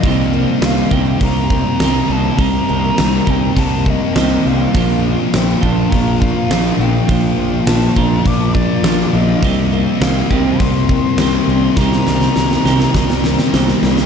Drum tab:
HH |o---o---o---o---|o---o---o---o---|o---o---o---o---|o---o---o---o---|
SD |----o-------o---|----o-------o---|----o-------o---|----o-------o---|
BD |o-----o-o-o-----|o-----o-o-o-----|o-----o-o-o-----|o-----o-o-o-----|

HH |o---o---o---o---|----------------|
SD |----o-------o---|oooooooooooooooo|
BD |o-----o-o-o-----|o-------o-------|